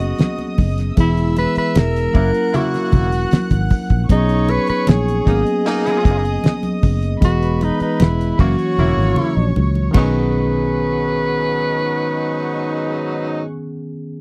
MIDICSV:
0, 0, Header, 1, 8, 480
1, 0, Start_track
1, 0, Key_signature, 5, "major"
1, 0, Tempo, 780234
1, 598, Time_signature, 4, 2, 24, 8
1, 8741, End_track
2, 0, Start_track
2, 0, Title_t, "Violin section"
2, 0, Program_c, 0, 48
2, 0, Note_on_c, 0, 75, 74
2, 0, Note_on_c, 0, 87, 85
2, 574, Note_off_c, 0, 87, 0
2, 575, Note_off_c, 0, 75, 0
2, 600, Note_on_c, 0, 76, 74
2, 601, Note_on_c, 0, 88, 84
2, 1306, Note_off_c, 0, 76, 0
2, 1306, Note_off_c, 0, 88, 0
2, 1323, Note_on_c, 0, 90, 88
2, 1324, Note_on_c, 0, 78, 78
2, 2498, Note_off_c, 0, 78, 0
2, 2498, Note_off_c, 0, 90, 0
2, 2523, Note_on_c, 0, 73, 89
2, 2524, Note_on_c, 0, 85, 93
2, 3227, Note_off_c, 0, 73, 0
2, 3228, Note_off_c, 0, 85, 0
2, 3242, Note_on_c, 0, 75, 82
2, 3242, Note_on_c, 0, 87, 87
2, 4417, Note_off_c, 0, 75, 0
2, 4417, Note_off_c, 0, 87, 0
2, 4439, Note_on_c, 0, 71, 78
2, 4442, Note_on_c, 0, 83, 87
2, 5145, Note_off_c, 0, 71, 0
2, 5146, Note_off_c, 0, 83, 0
2, 5161, Note_on_c, 0, 73, 86
2, 5161, Note_on_c, 0, 85, 88
2, 6100, Note_off_c, 0, 73, 0
2, 6100, Note_off_c, 0, 85, 0
2, 6116, Note_on_c, 0, 85, 109
2, 6117, Note_on_c, 0, 78, 88
2, 6119, Note_on_c, 0, 68, 86
2, 8255, Note_off_c, 0, 85, 0
2, 8257, Note_off_c, 0, 78, 0
2, 8258, Note_off_c, 0, 68, 0
2, 8741, End_track
3, 0, Start_track
3, 0, Title_t, "Tenor saxophone"
3, 0, Program_c, 1, 66
3, 0, Note_on_c, 1, 66, 87
3, 366, Note_off_c, 1, 66, 0
3, 616, Note_on_c, 1, 64, 96
3, 831, Note_off_c, 1, 64, 0
3, 853, Note_on_c, 1, 71, 109
3, 958, Note_off_c, 1, 71, 0
3, 974, Note_on_c, 1, 71, 101
3, 1095, Note_on_c, 1, 70, 100
3, 1104, Note_off_c, 1, 71, 0
3, 1574, Note_on_c, 1, 66, 110
3, 1583, Note_off_c, 1, 70, 0
3, 2287, Note_off_c, 1, 66, 0
3, 2534, Note_on_c, 1, 63, 106
3, 2772, Note_on_c, 1, 71, 119
3, 2781, Note_off_c, 1, 63, 0
3, 2885, Note_off_c, 1, 71, 0
3, 2888, Note_on_c, 1, 71, 103
3, 3006, Note_on_c, 1, 68, 101
3, 3015, Note_off_c, 1, 71, 0
3, 3483, Note_off_c, 1, 68, 0
3, 3489, Note_on_c, 1, 68, 117
3, 4180, Note_off_c, 1, 68, 0
3, 4460, Note_on_c, 1, 66, 115
3, 4693, Note_on_c, 1, 63, 97
3, 4703, Note_off_c, 1, 66, 0
3, 4807, Note_off_c, 1, 63, 0
3, 4810, Note_on_c, 1, 63, 89
3, 4933, Note_on_c, 1, 64, 103
3, 4942, Note_off_c, 1, 63, 0
3, 5166, Note_off_c, 1, 64, 0
3, 5170, Note_on_c, 1, 66, 111
3, 5860, Note_off_c, 1, 66, 0
3, 6130, Note_on_c, 1, 71, 93
3, 8270, Note_off_c, 1, 71, 0
3, 8741, End_track
4, 0, Start_track
4, 0, Title_t, "Tine electric piano"
4, 0, Program_c, 2, 4
4, 0, Control_c, 2, 64, 127
4, 0, Note_on_c, 2, 54, 57
4, 0, Note_on_c, 2, 58, 59
4, 0, Note_on_c, 2, 59, 53
4, 0, Note_on_c, 2, 61, 60
4, 0, Note_on_c, 2, 68, 62
4, 571, Note_off_c, 2, 54, 0
4, 575, Note_off_c, 2, 58, 0
4, 577, Note_off_c, 2, 59, 0
4, 579, Note_off_c, 2, 61, 0
4, 582, Note_off_c, 2, 68, 0
4, 596, Note_on_c, 2, 52, 70
4, 599, Note_on_c, 2, 56, 58
4, 603, Note_on_c, 2, 59, 63
4, 603, Note_on_c, 2, 64, 65
4, 605, Control_c, 2, 64, 0
4, 605, Note_on_c, 2, 68, 72
4, 726, Control_c, 2, 64, 127
4, 1310, Note_on_c, 2, 54, 67
4, 1315, Note_on_c, 2, 58, 62
4, 1318, Note_off_c, 2, 52, 0
4, 1319, Note_off_c, 2, 56, 0
4, 1319, Note_off_c, 2, 64, 0
4, 1319, Note_on_c, 2, 61, 61
4, 1321, Note_off_c, 2, 59, 0
4, 1322, Note_off_c, 2, 68, 0
4, 1326, Note_on_c, 2, 64, 60
4, 1328, Control_c, 2, 64, 0
4, 1333, Note_on_c, 2, 70, 73
4, 1446, Control_c, 2, 64, 127
4, 2491, Note_off_c, 2, 54, 0
4, 2494, Note_off_c, 2, 58, 0
4, 2496, Note_off_c, 2, 61, 0
4, 2500, Note_off_c, 2, 64, 0
4, 2503, Note_off_c, 2, 70, 0
4, 2519, Note_on_c, 2, 54, 68
4, 2525, Note_on_c, 2, 59, 62
4, 2527, Control_c, 2, 64, 0
4, 2527, Note_on_c, 2, 61, 59
4, 2527, Note_on_c, 2, 63, 65
4, 2532, Note_on_c, 2, 68, 84
4, 2650, Control_c, 2, 64, 127
4, 3226, Note_off_c, 2, 54, 0
4, 3233, Note_on_c, 2, 54, 63
4, 3234, Note_off_c, 2, 59, 0
4, 3236, Note_on_c, 2, 58, 58
4, 3241, Note_on_c, 2, 59, 60
4, 3242, Note_off_c, 2, 61, 0
4, 3244, Note_off_c, 2, 63, 0
4, 3246, Note_off_c, 2, 68, 0
4, 3248, Control_c, 2, 64, 0
4, 3250, Note_on_c, 2, 61, 63
4, 3253, Note_on_c, 2, 68, 65
4, 3353, Control_c, 2, 64, 127
4, 4413, Note_off_c, 2, 54, 0
4, 4414, Note_off_c, 2, 58, 0
4, 4417, Note_off_c, 2, 59, 0
4, 4421, Note_off_c, 2, 61, 0
4, 4423, Note_off_c, 2, 68, 0
4, 4433, Note_on_c, 2, 52, 68
4, 4437, Note_on_c, 2, 56, 63
4, 4438, Note_on_c, 2, 59, 66
4, 4442, Note_on_c, 2, 75, 63
4, 4444, Note_on_c, 2, 68, 71
4, 4448, Control_c, 2, 64, 0
4, 4567, Control_c, 2, 64, 127
4, 5143, Note_off_c, 2, 52, 0
4, 5150, Note_on_c, 2, 52, 57
4, 5153, Note_on_c, 2, 54, 60
4, 5158, Note_off_c, 2, 56, 0
4, 5159, Note_off_c, 2, 59, 0
4, 5161, Note_off_c, 2, 75, 0
4, 5161, Note_on_c, 2, 58, 54
4, 5162, Note_off_c, 2, 68, 0
4, 5166, Control_c, 2, 64, 0
4, 5167, Note_on_c, 2, 61, 61
4, 5170, Note_on_c, 2, 66, 64
4, 5281, Control_c, 2, 64, 127
4, 6095, Note_off_c, 2, 52, 0
4, 6096, Note_off_c, 2, 54, 0
4, 6097, Note_on_c, 2, 51, 86
4, 6100, Note_off_c, 2, 58, 0
4, 6103, Note_off_c, 2, 61, 0
4, 6105, Note_off_c, 2, 66, 0
4, 6113, Note_on_c, 2, 59, 77
4, 6127, Note_on_c, 2, 61, 77
4, 6128, Control_c, 2, 64, 0
4, 6140, Note_on_c, 2, 68, 102
4, 6213, Control_c, 2, 64, 127
4, 6368, Control_c, 2, 64, 0
4, 6469, Control_c, 2, 64, 127
4, 8237, Note_off_c, 2, 51, 0
4, 8253, Note_off_c, 2, 59, 0
4, 8267, Note_off_c, 2, 61, 0
4, 8280, Note_off_c, 2, 68, 0
4, 8741, End_track
5, 0, Start_track
5, 0, Title_t, "Horn section"
5, 0, Program_c, 3, 61
5, 1319, Note_on_c, 3, 58, 68
5, 1320, Note_on_c, 3, 49, 76
5, 1320, Note_on_c, 3, 64, 82
5, 1418, Note_off_c, 3, 58, 0
5, 1419, Note_off_c, 3, 49, 0
5, 1419, Note_off_c, 3, 64, 0
5, 1555, Note_on_c, 3, 49, 92
5, 1555, Note_on_c, 3, 64, 95
5, 1556, Note_on_c, 3, 58, 86
5, 1899, Note_off_c, 3, 49, 0
5, 1899, Note_off_c, 3, 64, 0
5, 1900, Note_off_c, 3, 58, 0
5, 3241, Note_on_c, 3, 63, 88
5, 3243, Note_on_c, 3, 47, 72
5, 3244, Note_on_c, 3, 58, 75
5, 3339, Note_off_c, 3, 63, 0
5, 3342, Note_off_c, 3, 47, 0
5, 3343, Note_off_c, 3, 58, 0
5, 3481, Note_on_c, 3, 47, 98
5, 3482, Note_on_c, 3, 63, 111
5, 3483, Note_on_c, 3, 58, 99
5, 3823, Note_off_c, 3, 47, 0
5, 3823, Note_off_c, 3, 63, 0
5, 3824, Note_off_c, 3, 58, 0
5, 5160, Note_on_c, 3, 49, 70
5, 5161, Note_on_c, 3, 58, 70
5, 5161, Note_on_c, 3, 64, 75
5, 5258, Note_off_c, 3, 49, 0
5, 5260, Note_off_c, 3, 58, 0
5, 5260, Note_off_c, 3, 64, 0
5, 5400, Note_on_c, 3, 58, 86
5, 5401, Note_on_c, 3, 49, 84
5, 5403, Note_on_c, 3, 64, 99
5, 5741, Note_off_c, 3, 58, 0
5, 5742, Note_off_c, 3, 49, 0
5, 5743, Note_off_c, 3, 64, 0
5, 6120, Note_on_c, 3, 54, 75
5, 6120, Note_on_c, 3, 63, 85
5, 6121, Note_on_c, 3, 44, 68
5, 8260, Note_off_c, 3, 54, 0
5, 8260, Note_off_c, 3, 63, 0
5, 8261, Note_off_c, 3, 44, 0
5, 8741, End_track
6, 0, Start_track
6, 0, Title_t, "Fingered electric bass"
6, 0, Program_c, 4, 33
6, 0, Note_on_c, 4, 30, 87
6, 76, Note_off_c, 4, 30, 0
6, 362, Note_on_c, 4, 30, 89
6, 556, Note_off_c, 4, 30, 0
6, 602, Note_on_c, 4, 28, 91
6, 894, Note_off_c, 4, 28, 0
6, 1082, Note_on_c, 4, 28, 83
6, 1276, Note_off_c, 4, 28, 0
6, 1323, Note_on_c, 4, 30, 105
6, 1419, Note_off_c, 4, 30, 0
6, 1804, Note_on_c, 4, 28, 82
6, 1998, Note_off_c, 4, 28, 0
6, 2162, Note_on_c, 4, 32, 91
6, 2259, Note_off_c, 4, 32, 0
6, 2401, Note_on_c, 4, 34, 91
6, 2498, Note_off_c, 4, 34, 0
6, 2521, Note_on_c, 4, 35, 99
6, 2814, Note_off_c, 4, 35, 0
6, 3007, Note_on_c, 4, 34, 91
6, 3199, Note_off_c, 4, 34, 0
6, 3245, Note_on_c, 4, 32, 100
6, 3340, Note_off_c, 4, 32, 0
6, 3725, Note_on_c, 4, 30, 93
6, 3918, Note_off_c, 4, 30, 0
6, 4207, Note_on_c, 4, 30, 90
6, 4399, Note_off_c, 4, 30, 0
6, 4443, Note_on_c, 4, 28, 103
6, 4735, Note_off_c, 4, 28, 0
6, 4924, Note_on_c, 4, 28, 77
6, 5118, Note_off_c, 4, 28, 0
6, 5163, Note_on_c, 4, 30, 98
6, 5259, Note_off_c, 4, 30, 0
6, 5403, Note_on_c, 4, 28, 98
6, 5499, Note_off_c, 4, 28, 0
6, 5521, Note_on_c, 4, 32, 81
6, 5618, Note_off_c, 4, 32, 0
6, 5763, Note_on_c, 4, 34, 82
6, 5859, Note_off_c, 4, 34, 0
6, 5887, Note_on_c, 4, 37, 96
6, 6079, Note_off_c, 4, 37, 0
6, 6122, Note_on_c, 4, 35, 106
6, 8262, Note_off_c, 4, 35, 0
6, 8741, End_track
7, 0, Start_track
7, 0, Title_t, "Muted fingered electric bass strokes"
7, 967, Note_on_c, 9, 29, 52
7, 1029, Note_off_c, 9, 29, 0
7, 2045, Note_on_c, 9, 29, 51
7, 2106, Note_off_c, 9, 29, 0
7, 2889, Note_on_c, 9, 29, 55
7, 2951, Note_off_c, 9, 29, 0
7, 4805, Note_on_c, 9, 29, 47
7, 4866, Note_off_c, 9, 29, 0
7, 8741, End_track
8, 0, Start_track
8, 0, Title_t, "Drums"
8, 0, Note_on_c, 9, 42, 63
8, 60, Note_off_c, 9, 42, 0
8, 114, Note_on_c, 9, 42, 82
8, 119, Note_on_c, 9, 63, 71
8, 126, Note_on_c, 9, 38, 100
8, 175, Note_off_c, 9, 42, 0
8, 180, Note_off_c, 9, 63, 0
8, 187, Note_off_c, 9, 38, 0
8, 236, Note_on_c, 9, 42, 46
8, 236, Note_on_c, 9, 63, 47
8, 298, Note_off_c, 9, 42, 0
8, 298, Note_off_c, 9, 63, 0
8, 356, Note_on_c, 9, 63, 69
8, 360, Note_on_c, 9, 36, 93
8, 360, Note_on_c, 9, 46, 84
8, 418, Note_off_c, 9, 63, 0
8, 421, Note_off_c, 9, 36, 0
8, 421, Note_off_c, 9, 46, 0
8, 478, Note_on_c, 9, 42, 56
8, 484, Note_on_c, 9, 38, 35
8, 540, Note_off_c, 9, 42, 0
8, 546, Note_off_c, 9, 38, 0
8, 597, Note_on_c, 9, 62, 57
8, 598, Note_on_c, 9, 42, 94
8, 600, Note_on_c, 9, 36, 98
8, 659, Note_off_c, 9, 42, 0
8, 659, Note_off_c, 9, 62, 0
8, 661, Note_off_c, 9, 36, 0
8, 721, Note_on_c, 9, 42, 52
8, 783, Note_off_c, 9, 42, 0
8, 840, Note_on_c, 9, 62, 41
8, 841, Note_on_c, 9, 42, 80
8, 901, Note_off_c, 9, 62, 0
8, 902, Note_off_c, 9, 42, 0
8, 957, Note_on_c, 9, 42, 58
8, 1018, Note_off_c, 9, 42, 0
8, 1078, Note_on_c, 9, 42, 99
8, 1081, Note_on_c, 9, 63, 78
8, 1091, Note_on_c, 9, 38, 111
8, 1139, Note_off_c, 9, 42, 0
8, 1142, Note_off_c, 9, 63, 0
8, 1152, Note_off_c, 9, 38, 0
8, 1208, Note_on_c, 9, 42, 59
8, 1269, Note_off_c, 9, 42, 0
8, 1321, Note_on_c, 9, 49, 65
8, 1322, Note_on_c, 9, 36, 102
8, 1383, Note_off_c, 9, 36, 0
8, 1383, Note_off_c, 9, 49, 0
8, 1442, Note_on_c, 9, 42, 53
8, 1504, Note_off_c, 9, 42, 0
8, 1562, Note_on_c, 9, 42, 95
8, 1565, Note_on_c, 9, 64, 68
8, 1624, Note_off_c, 9, 42, 0
8, 1626, Note_off_c, 9, 64, 0
8, 1685, Note_on_c, 9, 42, 54
8, 1689, Note_on_c, 9, 38, 41
8, 1747, Note_off_c, 9, 42, 0
8, 1751, Note_off_c, 9, 38, 0
8, 1798, Note_on_c, 9, 62, 36
8, 1798, Note_on_c, 9, 64, 78
8, 1801, Note_on_c, 9, 42, 71
8, 1802, Note_on_c, 9, 36, 101
8, 1860, Note_off_c, 9, 62, 0
8, 1860, Note_off_c, 9, 64, 0
8, 1863, Note_off_c, 9, 42, 0
8, 1864, Note_off_c, 9, 36, 0
8, 1921, Note_on_c, 9, 42, 65
8, 1983, Note_off_c, 9, 42, 0
8, 2038, Note_on_c, 9, 42, 83
8, 2047, Note_on_c, 9, 63, 73
8, 2050, Note_on_c, 9, 38, 112
8, 2100, Note_off_c, 9, 42, 0
8, 2109, Note_off_c, 9, 63, 0
8, 2112, Note_off_c, 9, 38, 0
8, 2156, Note_on_c, 9, 42, 52
8, 2159, Note_on_c, 9, 36, 85
8, 2164, Note_on_c, 9, 63, 50
8, 2217, Note_off_c, 9, 42, 0
8, 2220, Note_off_c, 9, 36, 0
8, 2225, Note_off_c, 9, 63, 0
8, 2280, Note_on_c, 9, 63, 68
8, 2281, Note_on_c, 9, 46, 80
8, 2282, Note_on_c, 9, 36, 91
8, 2341, Note_off_c, 9, 63, 0
8, 2343, Note_off_c, 9, 36, 0
8, 2343, Note_off_c, 9, 46, 0
8, 2398, Note_on_c, 9, 42, 61
8, 2400, Note_on_c, 9, 36, 77
8, 2459, Note_off_c, 9, 42, 0
8, 2462, Note_off_c, 9, 36, 0
8, 2517, Note_on_c, 9, 42, 98
8, 2519, Note_on_c, 9, 36, 113
8, 2522, Note_on_c, 9, 62, 60
8, 2579, Note_off_c, 9, 42, 0
8, 2581, Note_off_c, 9, 36, 0
8, 2584, Note_off_c, 9, 62, 0
8, 2640, Note_on_c, 9, 42, 52
8, 2701, Note_off_c, 9, 42, 0
8, 2759, Note_on_c, 9, 42, 74
8, 2759, Note_on_c, 9, 62, 43
8, 2821, Note_off_c, 9, 42, 0
8, 2821, Note_off_c, 9, 62, 0
8, 2874, Note_on_c, 9, 42, 60
8, 2936, Note_off_c, 9, 42, 0
8, 2996, Note_on_c, 9, 63, 82
8, 2997, Note_on_c, 9, 42, 108
8, 3010, Note_on_c, 9, 38, 109
8, 3058, Note_off_c, 9, 42, 0
8, 3058, Note_off_c, 9, 63, 0
8, 3072, Note_off_c, 9, 38, 0
8, 3127, Note_on_c, 9, 42, 68
8, 3189, Note_off_c, 9, 42, 0
8, 3241, Note_on_c, 9, 36, 109
8, 3243, Note_on_c, 9, 42, 64
8, 3303, Note_off_c, 9, 36, 0
8, 3304, Note_off_c, 9, 42, 0
8, 3361, Note_on_c, 9, 42, 52
8, 3423, Note_off_c, 9, 42, 0
8, 3484, Note_on_c, 9, 42, 92
8, 3545, Note_off_c, 9, 42, 0
8, 3608, Note_on_c, 9, 42, 54
8, 3611, Note_on_c, 9, 38, 42
8, 3669, Note_off_c, 9, 42, 0
8, 3673, Note_off_c, 9, 38, 0
8, 3723, Note_on_c, 9, 36, 109
8, 3726, Note_on_c, 9, 42, 79
8, 3785, Note_off_c, 9, 36, 0
8, 3787, Note_off_c, 9, 42, 0
8, 3845, Note_on_c, 9, 42, 61
8, 3906, Note_off_c, 9, 42, 0
8, 3960, Note_on_c, 9, 63, 69
8, 3962, Note_on_c, 9, 42, 79
8, 3974, Note_on_c, 9, 38, 100
8, 4022, Note_off_c, 9, 63, 0
8, 4023, Note_off_c, 9, 42, 0
8, 4036, Note_off_c, 9, 38, 0
8, 4078, Note_on_c, 9, 63, 53
8, 4084, Note_on_c, 9, 42, 50
8, 4140, Note_off_c, 9, 63, 0
8, 4145, Note_off_c, 9, 42, 0
8, 4202, Note_on_c, 9, 63, 67
8, 4203, Note_on_c, 9, 36, 106
8, 4206, Note_on_c, 9, 46, 84
8, 4263, Note_off_c, 9, 63, 0
8, 4265, Note_off_c, 9, 36, 0
8, 4267, Note_off_c, 9, 46, 0
8, 4321, Note_on_c, 9, 42, 61
8, 4383, Note_off_c, 9, 42, 0
8, 4441, Note_on_c, 9, 36, 117
8, 4442, Note_on_c, 9, 62, 61
8, 4443, Note_on_c, 9, 42, 91
8, 4503, Note_off_c, 9, 36, 0
8, 4503, Note_off_c, 9, 62, 0
8, 4504, Note_off_c, 9, 42, 0
8, 4567, Note_on_c, 9, 42, 56
8, 4628, Note_off_c, 9, 42, 0
8, 4682, Note_on_c, 9, 62, 43
8, 4687, Note_on_c, 9, 42, 72
8, 4743, Note_off_c, 9, 62, 0
8, 4749, Note_off_c, 9, 42, 0
8, 4799, Note_on_c, 9, 42, 58
8, 4861, Note_off_c, 9, 42, 0
8, 4921, Note_on_c, 9, 63, 72
8, 4922, Note_on_c, 9, 42, 99
8, 4936, Note_on_c, 9, 38, 99
8, 4982, Note_off_c, 9, 63, 0
8, 4984, Note_off_c, 9, 42, 0
8, 4997, Note_off_c, 9, 38, 0
8, 5050, Note_on_c, 9, 42, 66
8, 5112, Note_off_c, 9, 42, 0
8, 5162, Note_on_c, 9, 36, 105
8, 5165, Note_on_c, 9, 49, 78
8, 5224, Note_off_c, 9, 36, 0
8, 5226, Note_off_c, 9, 49, 0
8, 5282, Note_on_c, 9, 42, 56
8, 5344, Note_off_c, 9, 42, 0
8, 5407, Note_on_c, 9, 64, 65
8, 5469, Note_off_c, 9, 64, 0
8, 5636, Note_on_c, 9, 62, 36
8, 5636, Note_on_c, 9, 64, 79
8, 5698, Note_off_c, 9, 62, 0
8, 5698, Note_off_c, 9, 64, 0
8, 5883, Note_on_c, 9, 63, 75
8, 5944, Note_off_c, 9, 63, 0
8, 6000, Note_on_c, 9, 63, 49
8, 6061, Note_off_c, 9, 63, 0
8, 6118, Note_on_c, 9, 62, 90
8, 6121, Note_on_c, 9, 36, 113
8, 6122, Note_on_c, 9, 57, 90
8, 6179, Note_off_c, 9, 62, 0
8, 6183, Note_off_c, 9, 36, 0
8, 6184, Note_off_c, 9, 57, 0
8, 8741, End_track
0, 0, End_of_file